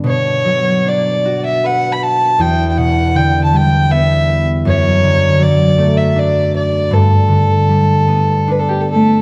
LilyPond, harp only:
\new Staff \with { instrumentName = "Harp" } { \clef bass \time 3/4 \key b \minor \tempo 4 = 78 b,8 fis8 d'8 fis'8 b'4 | e,8 b,8 d8 g8 b4 | fis,8 d8 fis8 a8 d'4 | g,8 d8 g8 b8 d'4 | }